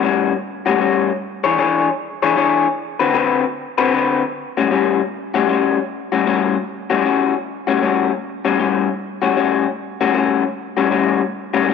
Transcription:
0.02 0.32 A2 medium
0.02 0.32 G3 medium
0.02 0.33 C#4 medium
0.02 0.33 F#4 medium
0.66 0.78 A2 medium
0.66 0.79 G3 medium
0.66 0.79 C#4 medium
0.66 0.80 F#4 loud
0.80 1.10 A2 medium
0.80 1.10 G3 medium
0.80 1.10 C#4 medium
0.80 1.10 F#4 medium
1.44 1.57 E3 medium
1.44 1.57 D4 medium
1.44 1.58 G#4 medium
1.44 1.58 C#5 medium
1.58 1.88 E3 medium
1.58 1.88 D4 medium
1.58 1.88 G#4 medium
1.58 1.88 C#5 medium
2.23 2.35 E3 medium
2.23 2.36 D4 medium
2.23 2.36 G#4 medium
2.23 2.36 C#5 medium
2.37 2.66 E3 medium
2.37 2.66 D4 medium
2.37 2.66 G#4 medium
2.37 2.66 C#5 medium
2.99 3.12 D3 medium
2.99 3.13 C4 medium
2.99 3.13 F#4 medium
2.99 3.14 B4 medium
3.13 3.43 D3 medium
3.13 3.44 C4 medium
3.13 3.44 F#4 medium
3.13 3.44 B4 medium
3.78 3.92 D3 medium
3.78 3.93 C4 medium
3.78 3.93 F#4 loud
3.78 3.93 B4 loud
3.93 4.22 D3 medium
3.93 4.22 C4 medium
3.93 4.22 F#4 medium
3.93 4.23 B4 medium
4.57 4.69 A2 medium
4.57 4.70 G3 medium
4.57 4.70 C#4 medium
4.57 4.70 F#4 medium
4.71 5.00 A2 medium
4.71 5.00 G3 medium
4.71 5.00 C#4 medium
4.71 5.00 F#4 medium
5.34 5.47 A2 medium
5.34 5.48 G3 medium
5.34 5.48 C#4 medium
5.34 5.48 F#4 medium
5.48 5.77 A2 medium
5.48 5.78 G3 medium
5.48 5.78 C#4 medium
5.48 5.78 F#4 medium
6.12 6.25 A2 medium
6.12 6.25 G3 medium
6.12 6.26 C#4 medium
6.12 6.26 F#4 medium
6.26 6.55 A2 medium
6.26 6.55 G3 medium
6.26 6.56 C#4 medium
6.26 6.56 F#4 medium
6.90 7.03 A2 medium
6.90 7.04 G3 medium
6.90 7.04 C#4 medium
6.90 7.04 F#4 loud
7.04 7.33 A2 medium
7.04 7.33 G3 medium
7.04 7.34 C#4 medium
7.04 7.34 F#4 medium
7.67 7.80 A2 medium
7.67 7.81 G3 medium
7.67 7.81 C#4 medium
7.67 7.81 F#4 medium
7.82 8.11 A2 medium
7.82 8.11 G3 medium
7.82 8.11 C#4 medium
7.82 8.11 F#4 medium
8.45 8.57 A2 medium
8.45 8.58 G3 medium
8.45 8.58 C#4 medium
8.45 8.59 F#4 medium
8.59 8.88 A2 medium
8.59 8.88 G3 medium
8.59 8.88 C#4 medium
8.59 8.88 F#4 medium
9.22 9.35 A2 medium
9.22 9.36 G3 medium
9.22 9.36 C#4 medium
9.22 9.36 F#4 medium
9.36 9.66 A2 medium
9.36 9.66 G3 medium
9.36 9.66 C#4 medium
9.36 9.66 F#4 medium
10.01 10.13 A2 medium
10.01 10.13 G3 medium
10.01 10.13 C#4 medium
10.01 10.13 F#4 loud
10.14 10.43 A2 medium
10.14 10.43 G3 medium
10.14 10.43 C#4 medium
10.14 10.44 F#4 medium
10.77 10.89 A2 medium
10.77 10.90 G3 medium
10.77 10.90 C#4 medium
10.77 10.90 F#4 medium
10.90 11.20 A2 medium
10.90 11.20 G3 medium
10.90 11.21 C#4 medium
10.90 11.21 F#4 medium
11.54 11.67 A2 medium
11.54 11.67 G3 medium
11.54 11.68 C#4 loud
11.54 11.68 F#4 medium
11.68 11.74 A2 medium
11.68 11.74 G3 medium
11.68 11.74 C#4 medium
11.68 11.74 F#4 medium

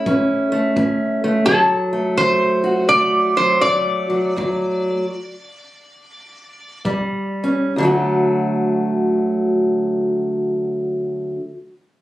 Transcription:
0.00 0.51 A3 medium
0.00 1.44 E4 medium
0.00 0.72 C#5 medium
0.06 0.72 A2 medium
0.06 0.75 C#4 medium
0.06 kick medium
0.52 1.24 A3 medium
0.76 1.42 A2 medium
0.76 1.44 C#4 medium
0.76 kick medium
1.24 1.47 A3 medium
1.46 2.12 D2 medium
1.46 3.36 F#3 medium
1.46 2.13 A4 medium
1.46 kick medium
1.93 2.88 A3 medium
2.17 2.84 D2 medium
2.17 2.91 C5 loud
2.17 kick medium
2.64 4.35 F#4 medium
2.89 3.57 D2 medium
2.89 3.60 A3 medium
2.89 3.37 D5 loud
2.89 kick medium
3.37 4.09 F#3 medium
3.37 3.63 C5 medium
3.61 4.32 D2 medium
3.61 4.88 A3 medium
3.61 6.80 D5 loud
3.61 kick medium
4.10 4.36 F#3 medium
4.36 5.04 D2 medium
4.36 5.05 F#3 medium
4.36 kick medium
6.85 7.70 D#2 medium
6.85 7.73 G3 medium
6.85 kick medium
7.44 7.73 C#4 medium
7.76 11.35 D2 medium
7.76 11.37 D3 medium
7.80 11.39 F#3 medium
7.80 11.42 A3 medium
7.85 11.44 F#4 medium

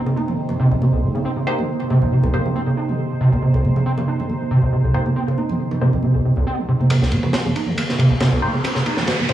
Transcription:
0.00 6.86 C3 medium
0.00 6.86 C4 medium
0.00 6.86 D#4 medium
0.00 6.86 C5 medium
0.06 0.12 C#3 medium
0.06 high bongo soft
0.16 0.29 D#4 medium
0.16 high conga medium
0.28 0.39 C#3 medium
0.28 low conga medium
0.38 0.51 D#3 loud
0.49 0.53 C3 medium
0.49 high bongo medium
0.49 high conga medium
0.49 low conga medium
0.60 0.69 C3 medium
0.71 0.75 C2 medium
0.71 low conga medium
0.82 0.91 C3 medium
0.82 high conga loud
0.93 1.05 C2 medium
1.03 1.13 C4 medium
1.15 1.20 C#3 medium
1.15 high conga medium
1.25 1.31 C4 loud
1.36 1.42 C#3 medium
1.47 1.60 A#3 medium
1.47 1.60 D#4 medium
1.47 1.60 G4 medium
1.47 1.60 C5 medium
1.58 1.70 C#3 medium
1.58 high conga medium
1.69 1.82 D#3 loud
1.80 1.84 C3 loud
1.80 high bongo medium
1.90 2.00 C3 loud
1.90 high conga medium
2.02 2.05 C2 medium
2.02 low conga medium
2.12 2.22 C3 medium
2.23 2.35 C2 medium
2.23 high bongo medium
2.23 high conga medium
2.23 low conga medium
2.34 2.47 A#3 medium
2.34 2.43 C4 medium
2.34 2.47 D#4 medium
2.34 2.47 G4 medium
2.34 2.47 C5 medium
2.45 2.51 C#3 medium
2.45 low conga medium
2.55 2.62 C4 loud
2.55 high conga medium
2.67 2.73 C#3 medium
2.77 2.90 D#4 medium
2.89 3.01 C#3 medium
2.89 high conga medium
2.99 3.12 D#3 loud
3.11 3.14 C3 loud
3.21 3.30 C3 loud
3.32 3.36 C2 medium
3.32 high conga medium
3.42 3.52 C3 medium
3.54 3.66 C2 medium
3.54 high bongo soft
3.64 3.74 C4 medium
3.64 high conga medium
3.76 3.82 C#3 medium
3.76 low conga medium
3.86 3.92 C4 medium
3.98 4.03 C#3 medium
3.98 high bongo medium
3.98 high conga medium
3.98 low conga medium
4.08 4.21 D#4 medium
4.20 4.31 C#3 medium
4.20 low conga medium
4.29 4.42 D#3 loud
4.29 high conga medium
4.41 4.44 C3 loud
4.51 4.61 C3 loud
4.62 4.66 C2 medium
4.62 high conga medium
4.73 4.82 C3 medium
4.84 4.96 C2 medium
4.94 5.08 A#3 medium
4.94 5.04 C4 medium
4.94 5.08 D#4 medium
4.94 5.08 G4 medium
4.94 5.08 C5 loud
5.06 5.12 C#3 medium
5.06 high conga medium
5.16 5.23 C4 loud
5.28 5.33 C#3 medium
5.28 high bongo soft
5.38 5.51 D#4 medium
5.38 high conga medium
5.49 5.61 C#3 medium
5.49 low conga medium
5.59 5.73 D#3 loud
5.71 5.75 C3 medium
5.71 high bongo medium
5.71 high conga medium
5.71 low conga medium
5.81 5.91 C3 loud
5.81 5.95 A#3 medium
5.81 5.95 D#4 medium
5.81 5.95 G4 medium
5.81 5.95 C5 medium
5.93 5.97 C2 medium
5.93 low conga medium
6.03 6.13 C3 medium
6.03 high conga medium
6.15 6.21 C2 medium
6.25 6.32 C3 medium
6.36 6.45 C2 loud
6.36 high conga medium
6.47 6.60 C4 loud
6.58 6.64 D#3 medium
6.68 6.72 C3 loud
6.80 6.88 C3 medium
6.80 high conga medium
6.90 7.00 C3 medium
6.90 9.33 C3 medium
6.90 9.33 C4 medium
6.90 9.33 D#4 medium
6.90 9.33 A#4 medium
6.90 kick loud
6.90 ride medium
6.90 riser medium
7.02 7.14 C2 medium
7.02 snare soft
7.12 7.41 C2 medium
7.12 7.22 C4 medium
7.12 ride medium
7.12 high conga loud
7.23 7.29 C#3 medium
7.23 kick medium
7.23 low conga medium
7.33 7.40 C4 loud
7.33 snare loud
7.33 ride medium
7.45 7.62 C2 medium
7.45 7.51 C#3 medium
7.45 high conga medium
7.45 low conga medium
7.56 7.69 D#4 medium
7.56 ride medium
7.66 7.75 C2 medium
7.66 7.79 C#3 medium
7.66 low conga medium
7.77 7.90 D#3 loud
7.77 ride medium
7.77 high conga medium
7.89 8.17 C2 loud
7.89 7.92 C3 loud
7.89 snare soft
7.99 8.09 C3 loud
7.99 kick medium
7.99 ride medium
8.10 8.14 C2 medium
8.10 high conga medium
8.20 8.30 C3 medium
8.20 snare loud
8.20 ride medium
8.32 8.44 C2 medium
8.32 kick loud
8.42 8.55 A#3 medium
8.42 8.52 C4 medium
8.42 8.55 D#4 medium
8.42 8.55 G4 medium
8.42 8.55 C5 loud
8.54 8.62 C2 medium
8.54 8.60 C#3 medium
8.54 high conga medium
8.64 8.71 C4 loud
8.64 kick loud
8.64 ride medium
8.75 8.81 C#3 medium
8.75 snare soft
8.86 9.15 C2 medium
8.86 8.99 D#4 medium
8.86 ride medium
8.86 high conga medium
8.97 9.09 C#3 medium
8.97 snare soft
8.97 low conga medium
9.08 9.21 D#3 loud
9.08 snare loud
9.08 ride medium
9.19 9.33 C2 medium
9.19 9.23 C3 medium
9.19 kick medium
9.19 high conga medium
9.19 low conga medium
9.29 9.33 C3 loud
9.29 9.33 A#3 medium
9.29 9.33 D#4 medium
9.29 9.33 G4 medium
9.29 9.33 C5 medium
9.29 kick loud
9.29 ride medium

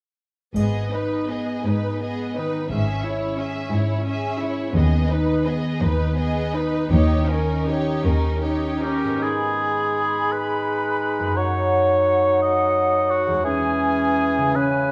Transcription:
0.55 1.25 G#1 soft
0.55 1.51 G#2 soft
0.55 2.70 G#2 soft
0.55 0.90 B3 soft
0.55 0.90 G#4 soft
0.55 0.90 D#5 soft
0.55 triangle soft
0.92 2.01 B3 soft
0.92 1.29 D#4 soft
0.92 1.30 B4 soft
1.29 1.66 B3 soft
1.29 2.74 D#4 soft
1.29 1.66 G#4 soft
1.29 1.66 D#5 soft
1.65 2.57 G#2 soft
1.65 2.01 D#4 soft
1.65 3.72 G#4 soft
1.65 2.01 B4 soft
1.65 2.02 B4 soft
2.01 2.34 B3 soft
2.01 2.74 B3 soft
2.01 2.34 G#4 soft
2.01 2.34 D#5 soft
2.36 2.74 D#3 soft
2.36 2.71 D#4 soft
2.36 2.71 B4 soft
2.36 2.72 B4 soft
2.70 3.35 G#1 soft
2.70 3.59 G#2 soft
2.70 4.79 G#2 soft
2.70 3.02 C#4 soft
2.70 3.03 G#4 soft
2.70 3.03 E5 soft
3.05 4.06 C#4 soft
3.05 3.39 E4 soft
3.05 3.39 C#5 soft
3.38 3.73 C#4 soft
3.38 4.79 E4 soft
3.38 3.73 G#4 soft
3.38 3.72 E5 soft
3.72 4.61 G#2 soft
3.72 4.06 E4 soft
3.72 4.07 E4 soft
3.72 5.46 G#4 soft
3.72 4.07 C#5 soft
4.05 4.38 C#4 soft
4.05 4.79 C#4 soft
4.05 4.39 G#4 soft
4.05 4.39 E5 soft
4.39 6.95 G#3 soft
4.39 4.75 E4 soft
4.39 4.76 E4 soft
4.39 4.76 C#5 soft
4.75 5.66 D#2 soft
4.75 5.42 D#2 soft
4.75 6.91 D#3 soft
4.75 5.08 B3 soft
4.75 5.08 G#4 soft
4.75 5.09 D#5 soft
5.10 5.45 D#4 soft
5.10 6.17 D#4 soft
5.10 5.45 B4 soft
5.10 5.46 B4 soft
5.45 5.81 B3 soft
5.45 5.81 G#4 soft
5.45 6.95 G#4 soft
5.45 5.82 D#5 soft
5.80 6.76 D#2 soft
5.80 6.17 D#4 soft
5.80 6.17 B4 soft
5.80 6.95 B4 soft
5.80 6.18 B4 soft
6.17 6.51 B3 soft
6.17 9.12 D#4 soft
6.17 6.51 G#4 soft
6.17 6.52 D#5 soft
6.54 6.95 B3 soft
6.54 6.90 D#4 soft
6.54 6.91 B4 soft
6.91 7.89 D#2 medium
6.91 7.63 D#2 medium
6.91 9.25 D#3 soft
6.91 7.26 D#4 soft
6.91 7.27 G4 soft
6.91 7.26 C#5 soft
7.28 7.66 C#4 soft
7.28 8.42 C#4 soft
7.28 7.67 D#4 soft
7.28 7.67 A#4 soft
7.66 8.04 D#4 soft
7.66 9.25 G4 soft
7.66 8.05 G4 soft
7.66 8.05 C#5 soft
8.04 9.06 D#2 soft
8.04 8.42 C#4 soft
8.04 8.43 D#4 soft
8.04 9.25 A#4 soft
8.04 8.43 A#4 soft
8.42 9.25 C#4 soft
8.42 8.80 D#4 soft
8.42 8.79 G4 soft
8.42 8.80 C#5 soft
8.82 9.25 A#3 soft
8.82 9.22 C#4 soft
8.82 9.22 D#4 soft
8.82 9.24 G4 soft
8.82 9.22 A#4 soft
9.04 11.31 G#2 soft
9.09 11.33 B3 soft
9.13 11.27 D#4 soft
9.18 11.32 G#3 soft
9.18 11.38 G#4 soft
9.22 13.41 D#4 soft
9.22 10.33 G#4 soft
9.22 11.33 B5 soft
10.32 11.38 B4 medium
11.19 13.38 F#2 soft
11.24 13.40 A#3 soft
11.28 13.43 D#4 soft
11.33 13.45 A#4 soft
11.37 13.40 F#3 soft
11.37 12.41 C#5 medium
11.37 13.22 F#5 soft
12.42 13.12 D#5 medium
13.10 13.44 F#4 medium
13.27 14.50 E2 soft
13.31 14.41 G#3 soft
13.36 14.46 G#4 soft
13.40 14.57 E3 soft
13.40 14.92 C#5 soft
13.44 14.52 C#4 medium
13.44 14.57 G#4 medium
13.44 14.52 G#5 medium
14.38 14.92 C#3 soft
14.42 14.92 G#3 soft
14.47 14.92 G#4 soft
14.51 14.92 B4 soft
14.55 14.92 C#3 medium
14.55 14.92 C#4 soft
14.55 14.92 B4 medium
14.55 14.92 G#5 soft

